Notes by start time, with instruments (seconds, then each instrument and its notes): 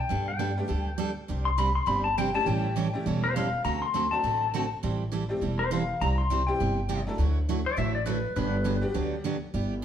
Already playing: electric slide guitar G5
0.09 upright bass G2, steel-string acoustic guitar G3 B3 D4 A4
0.28 electric slide guitar G5
0.39 steel-string acoustic guitar G3 B3 D4 A4
0.58 honky-tonk piano G3 A3 B3 D4 G4
0.68 upright bass D2, steel-string acoustic guitar G3 B3 D4 A4
0.98 steel-string acoustic guitar G3 B3 D4 A4
1.28 upright bass C2, steel-string acoustic guitar C3 G3 C4 D4 G4
1.45 electric slide guitar C6
1.58 steel-string acoustic guitar C3 G3 C4 D4 G4, electric slide guitar B5
1.75 electric slide guitar C6
1.86 upright bass G1, steel-string acoustic guitar C3 G3 C4 D4 G4, electric slide guitar B5
2.04 electric slide guitar A5
2.18 steel-string acoustic guitar C3 G3 C4 D4 G4, electric slide guitar G5
2.34 honky-tonk piano G3 A3 C#4 E4 G4, electric slide guitar A5
2.46 upright bass A1, steel-string acoustic guitar E3 G3 C#4 E4 A4, electric slide guitar G5
2.76 steel-string acoustic guitar E3 G3 C#4 E4 A4
2.93 honky-tonk piano G3 A3 C#4 E4 G4
3.06 upright bass E1, steel-string acoustic guitar E3 G3 C#4 E4 A4
3.24 electric slide guitar C5
3.34 steel-string acoustic guitar E3 G3 C#4 E4 A4, electric slide guitar F5
3.64 upright bass D2, steel-string acoustic guitar D3 A3 C4 F#4 A4, electric slide guitar A#5
3.82 electric slide guitar C6
3.94 steel-string acoustic guitar D3 A3 C4 F#4 A4
4.11 honky-tonk piano F#3 A3 C4 D4 F#4, electric slide guitar A5
4.23 upright bass A1, steel-string acoustic guitar D3 A3 C4 F#4 A4
4.54 steel-string acoustic guitar D3 A3 C4 F#4 A4
4.83 upright bass A1, steel-string acoustic guitar E3 G3 C4 E4 A4
5.12 steel-string acoustic guitar E3 G3 C4 E4 A4
5.29 honky-tonk piano G3 A3 C4 E4 G4
5.41 upright bass E1, steel-string acoustic guitar E3 G3 C4 E4 A4
5.59 electric slide guitar C5
5.71 steel-string acoustic guitar E3 G3 C4 E4 A4, electric slide guitar F5
6.01 upright bass C2, steel-string acoustic guitar C3 G3 C4 E4 G4, electric slide guitar A#5
6.18 electric slide guitar C6
6.30 steel-string acoustic guitar C3 G3 C4 E4 G4
6.47 honky-tonk piano E3 G3 C4 E4 G4, electric slide guitar G5
6.60 upright bass G1, steel-string acoustic guitar C3 G3 C4 E4 G4
6.89 steel-string acoustic guitar C3 G3 C4 E4 G4
7.07 honky-tonk piano F#3 A3 D4 E4 A4
7.18 upright bass D2, steel-string acoustic guitar D3 F#3 A3 E4 F#4
7.49 steel-string acoustic guitar D3 F#3 A3 E4 F#4
7.66 electric slide guitar D5
7.77 upright bass A1, steel-string acoustic guitar D3 F#3 A3 E4 F#4, electric slide guitar E5
7.95 electric slide guitar D5
8.06 steel-string acoustic guitar D3 F#3 A3 E4 F#4, electric slide guitar B4
8.36 upright bass G1, steel-string acoustic guitar D3 F#3 B3 D4 G4, electric slide guitar B4
8.64 steel-string acoustic guitar D3 F#3 B3 D4 G4
8.81 honky-tonk piano G3 B3 D4 F#4 G4
8.94 upright bass D2, steel-string acoustic guitar D3 F#3 B3 D4 G4
9.24 steel-string acoustic guitar D3 F#3 B3 D4 G4
9.54 upright bass G1, steel-string acoustic guitar G3 B3 E4 G4